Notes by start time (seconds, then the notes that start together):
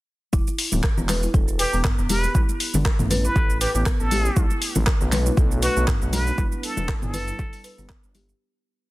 0.33 E1 E4, kick, high conga, shaker
0.47 muted conga, shaker
0.58 open hi-hat, shaker
0.72 D1, high conga, low conga, shaker
0.83 kick, cross-stick, clap, shaker
0.97 E1 B3, low conga, shaker
1.09 B4, clap, open hi-hat, muted conga, high conga, low conga, shaker
1.23 E4, shaker
1.34 E1 A4, kick, muted conga, high conga, shaker
1.48 shaker
1.59 G4 B4, open hi-hat, shaker
1.73 E1 B3, muted conga, shaker
1.84 kick, cross-stick, clap, mid tom, shaker
1.98 E1 B3, muted conga, shaker
2.09 G4 B4, open hi-hat, high conga, shaker
2.24 muted conga, shaker
2.35 A1 E4, kick, high conga, shaker
2.49 muted conga, shaker
2.60 open hi-hat, shaker
2.74 G1, high conga, low conga, shaker
2.85 kick, cross-stick, clap, shaker
2.99 A1 B3, mid tom, low conga, shaker
3.10 B4, open hi-hat, muted conga, high conga, low conga, shaker
3.25 E4 B4, shaker
3.36 A1 A4, kick, shaker
3.50 shaker
3.61 G4 B4, open hi-hat, shaker
3.75 A1 B3 G4, muted conga, shaker
3.86 kick, cross-stick, clap, shaker
4.00 A1 B3 A4, muted conga, shaker
4.11 G4, open hi-hat, high conga, shaker
4.25 muted conga, shaker
4.37 B1 A3 B3 D4 E4 F#4 B4, kick, high conga, shaker
4.50 muted conga, shaker
4.62 open hi-hat, shaker
4.76 A1, high conga, low conga, shaker
4.87 kick, cross-stick, clap, shaker
5.01 B1 B3, low conga, shaker
5.12 B4, clap, open hi-hat, muted conga, high conga, low conga, shaker
5.26 E4, shaker
5.37 B1 A4, kick, muted conga, high conga, shaker
5.51 shaker
5.62 F#4 B4, open hi-hat, shaker
5.76 B1 B3, muted conga, shaker
5.88 B3, kick, cross-stick, clap, mid tom, shaker
6.02 B1 B3, muted conga, shaker
6.13 F#4 B4, open hi-hat, high conga, shaker
6.27 muted conga, shaker
6.38 G1 G3 E4, kick, high conga, shaker
6.52 muted conga, shaker
6.63 A4, open hi-hat, shaker
6.77 E1, high conga, low conga, shaker
6.89 kick, cross-stick, clap, shaker
7.02 G1 B3 A4, mid tom, low conga, shaker
7.14 B4, open hi-hat, muted conga, high conga, low conga, shaker
7.28 E4, shaker
7.39 G1 A4, kick, muted conga, shaker
7.53 open hi-hat, shaker
7.64 B4, open hi-hat, shaker
7.78 G1 B3, muted conga, shaker
7.89 kick, cross-stick, clap, shaker
8.03 G1 B3, muted conga, shaker
8.15 G4, open hi-hat, high conga, shaker
8.29 muted conga, shaker